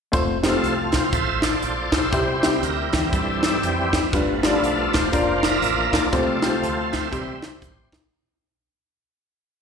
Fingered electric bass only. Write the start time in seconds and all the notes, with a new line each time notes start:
0.14 F1
0.63 C2
1.13 A1
1.63 A#1
1.92 A#1
2.13 C2
2.63 D2
2.94 E2
3.13 G2
3.63 F2
4.13 G1
4.62 B1
4.94 E1
5.13 F1
5.62 A1
5.93 A#1
6.13 C2
6.62 D2
7.13 C2
7.62 A1
7.93 A#1